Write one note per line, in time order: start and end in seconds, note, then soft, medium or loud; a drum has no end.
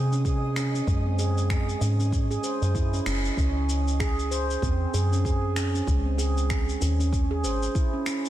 0.00 0.81 C3 medium
0.00 0.11 G#4 medium
0.00 3.40 D#5 medium
0.12 0.20 C#4 medium
0.12 shaker soft
0.25 0.55 G#4 loud
0.25 kick medium
0.25 shaker soft
0.56 0.67 C#4 medium
0.56 finger snap medium
0.56 shaker medium
0.74 0.82 C#4 medium
0.74 shaker soft
0.87 1.75 F#2 medium
0.87 1.04 G#3 medium
0.87 kick loud
0.87 shaker soft
1.06 1.18 C4 medium
1.19 1.36 G#4 medium
1.19 shaker medium
1.38 shaker soft
1.50 finger snap medium
1.50 kick medium
1.50 shaker soft
1.69 shaker soft
1.81 2.38 G#2 medium
1.81 1.92 C#4 medium
1.81 shaker medium
2.00 2.07 C#4 medium
2.00 shaker soft
2.12 kick loud
2.12 shaker soft
2.31 2.42 G#4 loud
2.31 shaker soft
2.44 2.61 C5 medium
2.44 shaker medium
2.62 3.00 F#2 medium
2.62 shaker soft
2.75 2.86 E4 medium
2.75 kick loud
2.75 shaker soft
2.93 3.05 C#4 medium
2.93 shaker soft
3.06 3.30 F#1 loud
3.06 3.17 C#4 medium
3.06 finger snap medium
3.06 shaker medium
3.25 shaker soft
3.37 4.56 C#2 medium
3.37 3.48 C#4 loud
3.37 kick loud
3.37 shaker soft
3.69 shaker medium
3.88 shaker soft
4.00 4.30 G#4 loud
4.00 finger snap medium
4.00 kick loud
4.00 shaker soft
4.19 shaker soft
4.31 4.42 C5 medium
4.31 shaker medium
4.50 shaker soft
4.62 4.86 E2 medium
4.62 4.73 C4 loud
4.62 kick loud
4.62 shaker soft
4.94 5.82 F#2 medium
4.94 5.11 G#4 medium
4.94 shaker medium
5.12 5.20 C#4 medium
5.12 shaker soft
5.25 5.55 G#4 loud
5.25 kick loud
5.25 shaker soft
5.56 5.67 C#4 medium
5.56 finger snap medium
5.56 shaker medium
5.75 5.82 C#4 medium
5.75 shaker soft
5.87 6.75 C#2 medium
5.87 6.04 G#3 medium
5.87 kick loud
5.87 shaker soft
6.06 6.18 C4 medium
6.18 6.36 G#4 medium
6.18 shaker medium
6.38 shaker soft
6.50 finger snap medium
6.50 kick loud
6.50 shaker soft
6.69 shaker soft
6.81 7.46 D#2 medium
6.81 6.91 C#4 medium
6.81 shaker medium
7.00 7.07 C#4 medium
7.00 shaker soft
7.13 kick loud
7.13 shaker soft
7.31 7.42 G#4 medium
7.44 7.68 G#1 medium
7.44 7.61 C5 medium
7.44 shaker medium
7.63 shaker soft
7.75 7.86 E4 medium
7.75 kick loud
7.75 shaker soft
7.93 8.05 C#4 medium
8.06 8.17 C#4 medium
8.06 finger snap medium
8.06 shaker medium
8.25 shaker soft